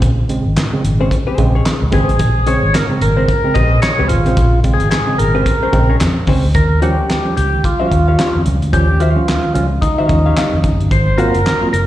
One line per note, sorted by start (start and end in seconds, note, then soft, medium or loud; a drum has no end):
0.02 0.37 A#1 loud
0.02 0.17 A#2 medium
0.02 kick loud
0.02 closed hi-hat medium
0.19 0.23 G#3 soft
0.19 0.23 C4 soft
0.29 0.43 C#3 medium
0.29 0.44 G#3 medium
0.29 0.44 C4 medium
0.29 closed hi-hat medium
0.46 0.55 G#1 medium
0.57 snare loud
0.57 clap loud
0.57 clap medium
0.57 closed hi-hat medium
0.73 0.82 C#3 medium
0.73 0.83 G#3 medium
0.73 0.83 C4 medium
0.84 1.06 G#1 medium
0.84 0.98 A#2 medium
0.84 closed hi-hat medium
0.99 1.09 C#3 medium
0.99 1.09 G#3 medium
0.99 1.09 C4 medium
0.99 1.15 C#4 medium
0.99 1.14 G#4 medium
0.99 1.14 C5 medium
1.11 kick medium
1.11 closed hi-hat medium
1.27 1.46 C#4 medium
1.27 1.46 G#4 medium
1.27 1.46 C5 medium
1.38 1.60 A#1 medium
1.38 1.52 C#3 loud
1.38 1.52 G#3 loud
1.38 1.52 C4 loud
1.38 kick medium
1.38 closed hi-hat medium
1.55 1.66 C#4 medium
1.55 1.65 G#4 medium
1.55 1.65 C#5 medium
1.65 snare loud
1.65 clap medium
1.65 clap loud
1.65 closed hi-hat loud
1.82 1.91 C#2 loud
1.91 2.09 G#1 medium
1.91 2.06 C#3 loud
1.91 2.06 G#3 medium
1.91 2.07 C4 loud
1.91 2.14 C#4 medium
1.91 2.14 G#4 medium
1.91 2.49 G#4 medium
1.91 2.15 C5 medium
1.91 kick medium
1.91 closed hi-hat medium
2.09 2.20 A1 medium
2.09 closed hi-hat soft
2.19 2.55 A#1 loud
2.19 2.34 A#2 medium
2.19 kick loud
2.19 closed hi-hat medium
2.36 2.40 G#3 soft
2.36 2.40 C4 soft
2.46 2.61 C#3 medium
2.46 2.61 G#3 medium
2.46 2.61 C4 medium
2.46 2.65 C#4 medium
2.46 2.66 G#4 medium
2.46 2.66 C5 medium
2.46 2.75 C#5 loud
2.46 closed hi-hat medium
2.63 2.72 G#1 medium
2.74 2.86 A#4 loud
2.74 snare loud
2.74 clap medium
2.74 clap loud
2.74 closed hi-hat medium
2.89 2.99 C#3 medium
2.89 3.00 G#3 medium
2.89 3.00 C4 medium
3.01 3.23 G#1 loud
3.01 3.15 A#2 medium
3.01 3.58 A#4 loud
3.01 closed hi-hat medium
3.17 3.27 C#3 medium
3.17 3.27 G#3 medium
3.17 3.27 C4 medium
3.17 3.32 C#4 medium
3.17 3.32 G#4 medium
3.17 3.31 C5 medium
3.29 kick medium
3.29 closed hi-hat medium
3.44 3.54 C#3 medium
3.44 3.54 G#3 medium
3.44 3.54 C4 medium
3.54 3.78 A#1 medium
3.54 3.77 C#4 medium
3.54 3.77 G#4 medium
3.54 3.78 C5 loud
3.54 3.80 D#5 loud
3.54 kick medium
3.54 closed hi-hat medium
3.71 3.81 A#2 medium
3.82 4.08 C#5 loud
3.82 snare loud
3.82 clap medium
3.82 clap loud
3.82 closed hi-hat loud
3.98 4.08 C#2 medium
3.98 4.08 C#3 medium
3.98 4.08 G#3 medium
3.98 4.08 C4 medium
3.98 4.18 C#4 medium
3.98 4.18 G#4 medium
3.98 4.18 C5 medium
4.08 4.27 G#1 medium
4.08 4.24 A#2 medium
4.08 4.60 F4 loud
4.08 closed hi-hat medium
4.26 4.35 A1 medium
4.26 4.36 C#3 medium
4.26 4.36 G#3 medium
4.26 4.36 C4 medium
4.26 4.37 C#4 soft
4.26 4.37 G#4 soft
4.26 4.37 C5 medium
4.26 closed hi-hat soft
4.37 4.72 A#1 medium
4.37 4.51 A#2 medium
4.37 kick loud
4.37 closed hi-hat medium
4.53 4.58 G#3 soft
4.53 4.58 C4 soft
4.64 4.78 C#3 medium
4.64 4.78 G#3 medium
4.64 4.79 C4 medium
4.64 kick medium
4.64 closed hi-hat medium
4.74 4.90 G#4 medium
4.80 4.90 G#1 medium
4.80 closed hi-hat soft
4.91 5.19 G#4 medium
4.91 snare loud
4.91 clap loud
4.91 clap medium
4.91 closed hi-hat medium
5.07 5.17 C#3 medium
5.07 5.17 G#3 medium
5.07 5.17 C4 medium
5.18 5.41 G#1 medium
5.18 5.33 A#2 medium
5.18 5.97 A#4 loud
5.18 closed hi-hat medium
5.34 5.44 C#3 medium
5.34 5.44 G#3 medium
5.34 5.45 C4 medium
5.34 5.54 C#4 medium
5.34 5.54 G#4 medium
5.34 5.54 C5 medium
5.46 kick medium
5.46 closed hi-hat medium
5.63 5.77 C#4 medium
5.63 5.77 G#4 medium
5.63 5.77 C5 medium
5.73 5.96 A#1 medium
5.73 5.87 C#3 medium
5.73 5.87 G#3 medium
5.73 5.88 C4 loud
5.73 kick medium
5.73 closed hi-hat medium
5.90 6.00 C#4 medium
5.90 6.00 G#4 medium
5.90 6.00 C#5 medium
6.00 6.14 F2 medium
6.00 snare loud
6.00 clap medium
6.00 clap loud
6.00 closed hi-hat loud
6.27 6.41 C#2 medium
6.27 6.42 C#3 medium
6.27 6.42 G#3 medium
6.27 6.42 C4 medium
6.27 6.46 C#4 medium
6.27 6.47 G#4 medium
6.27 6.47 C5 loud
6.27 kick medium
6.27 open hi-hat medium
6.45 6.54 D2 medium
6.54 6.99 D#2 medium
6.54 6.70 D#3 medium
6.54 6.81 A#4 loud
6.54 kick loud
6.54 closed hi-hat medium
6.82 6.96 F3 medium
6.82 6.97 G3 medium
6.82 6.97 C#4 medium
6.82 7.04 G4 medium
6.82 7.36 G4 medium
6.82 7.04 C#5 medium
6.82 7.04 G5 loud
6.82 closed hi-hat medium
6.98 7.08 C#2 medium
6.98 7.03 G3 soft
6.98 7.03 C#4 soft
7.10 snare loud
7.10 clap medium
7.10 closed hi-hat medium
7.25 7.35 F3 medium
7.25 7.35 G3 medium
7.25 7.35 C#4 medium
7.37 7.59 C#2 medium
7.37 7.65 G4 medium
7.37 closed hi-hat medium
7.53 7.63 D#3 medium
7.64 8.42 F4 medium
7.64 kick medium
7.64 closed hi-hat medium
7.80 7.90 F3 medium
7.80 7.90 G3 medium
7.80 7.90 C#4 medium
7.80 7.99 G4 medium
7.80 7.99 C#5 medium
7.80 7.99 F5 medium
7.91 8.13 D#2 medium
7.91 kick medium
7.91 closed hi-hat medium
8.08 8.17 D#3 medium
8.08 8.17 G4 medium
8.08 8.18 C#5 medium
8.08 8.18 F5 medium
8.18 8.33 G3 medium
8.18 8.33 C#4 medium
8.18 8.37 G4 medium
8.18 8.37 C#5 medium
8.18 8.38 F5 medium
8.18 snare loud
8.18 clap loud
8.18 closed hi-hat medium
8.35 8.44 F2 medium
8.35 8.44 D#3 medium
8.45 8.59 C#2 medium
8.45 8.60 G3 medium
8.45 8.60 C#4 medium
8.45 closed hi-hat medium
8.62 8.71 D2 medium
8.62 closed hi-hat soft
8.73 9.17 D#2 loud
8.73 8.87 F3 loud
8.73 8.87 G3 medium
8.73 8.87 C#4 loud
8.73 9.01 G4 loud
8.73 kick loud
8.73 closed hi-hat medium
9.00 9.14 D#3 medium
9.00 9.53 F4 medium
9.00 9.22 G4 medium
9.00 9.23 C#5 medium
9.00 9.23 F5 loud
9.00 closed hi-hat medium
9.15 9.26 C#2 medium
9.15 9.26 F3 medium
9.15 9.26 G3 medium
9.15 9.26 C#4 medium
9.27 9.34 G3 soft
9.27 9.34 C#4 soft
9.27 snare loud
9.27 clap loud
9.27 closed hi-hat medium
9.44 9.53 D#3 medium
9.54 9.77 C#2 loud
9.54 9.69 F3 medium
9.54 9.69 G3 medium
9.54 9.69 C#4 medium
9.54 9.67 F4 medium
9.54 closed hi-hat medium
9.82 9.89 G3 soft
9.82 9.89 C#4 soft
9.82 10.60 D#4 medium
9.82 kick medium
9.82 closed hi-hat medium
9.98 10.08 D#3 medium
9.98 10.18 G4 medium
9.98 10.17 C#5 medium
9.98 10.17 F5 medium
10.08 10.31 D#2 loud
10.08 10.23 F3 medium
10.08 10.23 G3 medium
10.08 10.23 C#4 medium
10.08 kick medium
10.08 closed hi-hat medium
10.26 10.36 G4 medium
10.26 10.36 C#5 medium
10.26 10.36 F5 medium
10.36 10.50 G3 medium
10.36 10.51 C#4 medium
10.36 10.55 G4 medium
10.36 10.55 C#5 medium
10.36 10.56 F5 medium
10.36 snare loud
10.36 clap loud
10.36 closed hi-hat loud
10.52 10.62 F2 medium
10.52 10.62 D#3 medium
10.63 10.77 F#1 medium
10.63 10.77 G3 medium
10.63 10.78 C#4 medium
10.63 kick medium
10.63 closed hi-hat medium
10.80 10.89 G1 medium
10.80 closed hi-hat soft
10.91 11.26 G#1 loud
10.91 11.05 G#2 medium
10.91 11.05 D#3 medium
10.91 11.20 C5 loud
10.91 kick loud
10.91 closed hi-hat medium
11.18 11.32 F#3 loud
11.18 11.32 A#3 medium
11.18 11.32 C4 medium
11.18 11.32 F4 loud
11.18 11.37 F#4 medium
11.18 11.69 A#4 loud
11.18 11.37 C5 medium
11.18 11.37 F#5 medium
11.18 closed hi-hat medium
11.34 11.44 F#1 medium
11.34 11.39 C4 soft
11.34 11.39 F4 soft
11.34 closed hi-hat soft
11.46 snare loud
11.46 clap medium
11.46 closed hi-hat medium
11.61 11.71 F#3 medium
11.61 11.71 A#3 medium
11.61 11.71 C4 medium
11.61 11.71 F4 medium
11.73 11.87 F#1 medium
11.73 11.85 A#4 loud
11.73 closed hi-hat medium